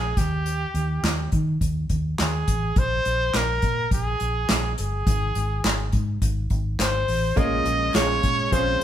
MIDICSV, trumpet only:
0, 0, Header, 1, 2, 480
1, 0, Start_track
1, 0, Tempo, 575816
1, 383, Time_signature, 4, 2, 24, 8
1, 7367, End_track
2, 0, Start_track
2, 0, Title_t, "Trumpet"
2, 0, Program_c, 0, 56
2, 0, Note_on_c, 0, 68, 81
2, 147, Note_on_c, 0, 67, 79
2, 160, Note_off_c, 0, 68, 0
2, 1106, Note_off_c, 0, 67, 0
2, 1850, Note_on_c, 0, 68, 81
2, 2320, Note_on_c, 0, 72, 100
2, 2333, Note_off_c, 0, 68, 0
2, 2803, Note_on_c, 0, 70, 85
2, 2815, Note_off_c, 0, 72, 0
2, 3271, Note_off_c, 0, 70, 0
2, 3276, Note_on_c, 0, 68, 82
2, 3958, Note_off_c, 0, 68, 0
2, 4002, Note_on_c, 0, 68, 74
2, 4920, Note_off_c, 0, 68, 0
2, 5670, Note_on_c, 0, 72, 91
2, 6149, Note_on_c, 0, 75, 98
2, 6162, Note_off_c, 0, 72, 0
2, 6627, Note_on_c, 0, 73, 98
2, 6640, Note_off_c, 0, 75, 0
2, 7107, Note_on_c, 0, 72, 99
2, 7120, Note_off_c, 0, 73, 0
2, 7367, Note_off_c, 0, 72, 0
2, 7367, End_track
0, 0, End_of_file